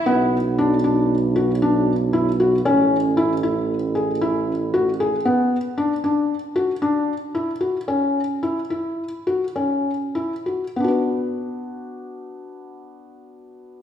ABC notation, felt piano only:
X:1
M:5/4
L:1/8
Q:1/4=115
K:Bm
V:1 name="Felt piano"
B,2 D D2 F D2 E F | C2 E E2 ^G E2 F G | B,2 D D2 F D2 E F | C2 E E2 F C2 E F |
[B,DFB]8- [B,DFB]2 |]